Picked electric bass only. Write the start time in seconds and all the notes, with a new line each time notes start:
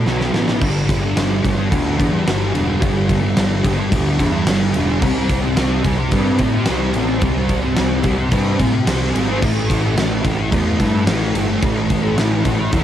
0.07 B1
0.33 A1
0.62 G1
0.89 G1
1.17 G1
1.45 G1
1.72 D2
2.00 E2
2.28 G1
2.56 E1
2.82 G1
3.10 G1
3.37 G1
3.64 G1
3.93 D2
4.20 E2
4.47 G1
4.75 E1
5.02 C2
5.29 C2
5.57 C2
5.85 C2
6.12 G2
6.40 A2
6.69 C2
6.95 A1
7.23 C2
7.50 C2
7.79 C2
8.05 C2
8.33 G2
8.60 A2
8.88 C2
9.16 G#1
9.43 A1
9.70 A1
9.97 A1
10.25 A1
10.52 E2
10.80 G2
11.07 A1
11.34 G1
11.63 A1
11.90 A1
12.17 A1
12.45 A1
12.73 E2